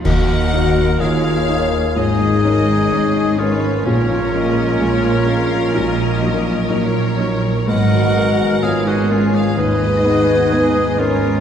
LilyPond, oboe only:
\new Staff \with { instrumentName = "Oboe" } { \time 4/4 \key ees \minor \tempo 4 = 63 bes'4 aes'4 aes'4. f'8 | des'2.~ des'8. r16 | bes'4 aes'16 ges'16 f'16 aes'16 aes'4. f'8 | }